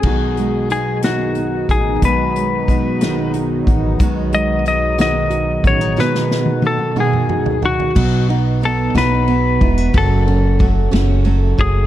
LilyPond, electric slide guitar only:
\new Staff \with { instrumentName = "Electric slide guitar" } { \time 6/8 \key b \mixolydian \tempo 4. = 61 gis'4 gis'8 fis'4 gis'8 | b'2 r4 | r8 dis''8 dis''8 dis''4 cis''8 | b'4 a'8 gis'4 fis'8~ |
fis'8 r8 a'8 b'4. | a'4 r4. gis'8 | }